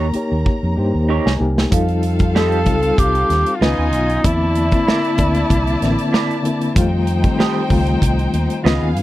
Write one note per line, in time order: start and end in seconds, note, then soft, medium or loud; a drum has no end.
0.00 0.11 D#2 loud
0.00 0.13 A#3 medium
0.00 0.14 D#4 medium
0.00 0.15 G4 medium
0.00 1.37 A#4 medium
0.00 1.37 A#5 loud
0.13 0.72 A#3 medium
0.13 0.72 D#4 medium
0.13 0.73 G4 medium
0.13 0.74 C#5 medium
0.13 muted fingered electric bass stroke soft
0.13 closed hi-hat medium
0.32 0.43 D#2 medium
0.46 kick medium
0.63 0.74 F2 medium
0.76 0.90 G2 medium
0.76 1.35 A#3 medium
0.76 1.35 D#4 medium
0.76 1.36 G4 medium
0.76 1.37 C5 medium
0.94 1.19 D#2 medium
1.09 1.31 D#4 medium
1.09 1.32 G4 medium
1.09 1.32 C#5 medium
1.09 1.25 D#5 medium
1.26 1.37 C2 medium
1.26 1.69 G#5 medium
1.26 snare medium
1.39 1.65 C2 medium
1.39 1.69 A#3 medium
1.39 1.69 D#4 medium
1.39 1.70 G4 medium
1.39 1.70 A#4 medium
1.58 snare medium
1.70 2.68 F2 medium
1.70 2.15 G3 medium
1.70 3.57 C4 medium
1.70 2.16 D#4 medium
1.70 2.16 F4 medium
1.70 3.57 A4 medium
1.70 2.17 A4 loud
1.70 3.57 F5 medium
1.70 3.89 F5 medium
1.70 kick loud
1.70 closed hi-hat medium
1.89 closed hi-hat soft
2.03 closed hi-hat medium
2.19 2.62 G3 medium
2.19 2.63 D#4 medium
2.19 2.63 F4 medium
2.19 2.64 A4 medium
2.19 kick medium
2.19 closed hi-hat soft
2.35 2.57 G4 medium
2.35 3.00 A4 medium
2.35 2.58 A4 medium
2.35 2.58 D#5 medium
2.35 snare loud
2.52 closed hi-hat soft
2.65 2.91 C#2 medium
2.65 3.61 G3 medium
2.65 3.61 D#4 medium
2.65 3.62 F4 medium
2.65 3.62 A4 medium
2.65 kick medium
2.65 closed hi-hat medium
2.83 closed hi-hat soft
2.98 3.22 C2 medium
2.98 3.57 G4 loud
2.98 kick medium
2.98 closed hi-hat medium
3.15 closed hi-hat soft
3.30 3.43 D#2 medium
3.30 snare soft
3.30 closed hi-hat medium
3.46 closed hi-hat soft
3.55 3.64 F4 medium
3.60 3.74 C#2 medium
3.60 4.18 D#3 medium
3.60 4.19 B3 medium
3.60 4.20 C#4 medium
3.60 4.27 D#4 medium
3.60 4.23 F4 medium
3.60 3.83 F4 medium
3.60 4.20 F4 medium
3.60 3.84 B4 medium
3.60 4.23 D#5 medium
3.60 4.52 D#5 soft
3.60 3.84 D#5 medium
3.60 4.23 G#5 medium
3.60 snare loud
3.78 3.93 D#2 medium
3.93 4.17 B1 medium
3.93 closed hi-hat medium
4.10 closed hi-hat soft
4.23 4.72 E2 loud
4.23 4.68 D3 medium
4.23 4.68 A#3 medium
4.23 4.69 C4 medium
4.23 6.72 E4 medium
4.23 6.45 E4 medium
4.23 4.70 E4 medium
4.23 6.72 D5 medium
4.23 6.72 A5 medium
4.23 kick loud
4.23 closed hi-hat medium
4.55 closed hi-hat medium
4.71 5.14 D3 medium
4.71 5.15 A#3 medium
4.71 5.16 C4 medium
4.71 5.16 E4 medium
4.71 kick medium
4.71 closed hi-hat soft
4.87 5.09 E4 medium
4.87 5.10 A#4 medium
4.87 5.10 D5 medium
4.87 snare medium
5.04 closed hi-hat soft
5.17 5.43 D2 medium
5.17 5.76 D3 medium
5.17 5.76 A#3 medium
5.17 5.77 C4 medium
5.17 5.78 E4 medium
5.17 7.03 D5 medium
5.17 kick medium
5.17 closed hi-hat medium
5.35 closed hi-hat soft
5.50 5.74 C2 medium
5.50 kick medium
5.50 closed hi-hat medium
5.67 closed hi-hat soft
5.80 5.95 A1 medium
5.80 6.39 D3 medium
5.80 6.39 A#3 medium
5.80 6.40 C4 medium
5.80 6.40 E4 loud
5.80 snare soft
5.80 closed hi-hat medium
5.99 closed hi-hat medium
6.13 6.35 E4 medium
6.13 6.35 A#4 medium
6.13 6.36 D5 medium
6.13 snare medium
6.31 closed hi-hat soft
6.43 6.73 D3 medium
6.43 6.73 A#3 medium
6.43 6.74 C4 medium
6.43 6.74 E4 medium
6.43 closed hi-hat medium
6.62 closed hi-hat medium
6.74 7.24 F2 loud
6.74 7.19 D#3 loud
6.74 7.20 G3 medium
6.74 7.20 A3 loud
6.74 8.61 D#4 medium
6.74 7.21 F4 loud
6.74 8.61 C5 medium
6.74 8.61 G5 medium
6.74 kick loud
6.74 closed hi-hat loud
7.07 closed hi-hat medium
7.23 7.66 D#3 medium
7.23 7.66 G3 medium
7.23 7.67 A3 medium
7.23 7.68 C4 medium
7.23 kick medium
7.23 closed hi-hat soft
7.39 7.61 G4 medium
7.39 7.61 A4 medium
7.39 7.62 D#5 medium
7.39 snare loud
7.68 7.94 C#2 medium
7.68 8.62 D#3 medium
7.68 8.64 G3 medium
7.68 8.65 A3 medium
7.68 8.65 F4 loud
7.68 kick medium
7.68 open hi-hat medium
7.87 closed hi-hat soft
8.02 8.26 C2 medium
8.02 kick medium
8.02 closed hi-hat medium
8.19 closed hi-hat soft
8.33 8.46 D#2 medium
8.33 closed hi-hat medium
8.50 closed hi-hat medium
8.63 8.78 C#2 medium
8.63 9.03 D#3 medium
8.63 9.03 B3 medium
8.63 9.03 C#4 medium
8.63 8.87 F4 medium
8.63 9.03 F4 medium
8.63 9.03 G#4 medium
8.63 8.87 B4 medium
8.63 8.87 D#5 loud
8.63 9.03 F5 medium
8.63 snare loud
8.82 8.96 D#2 medium
8.96 9.03 G2 medium
8.96 closed hi-hat medium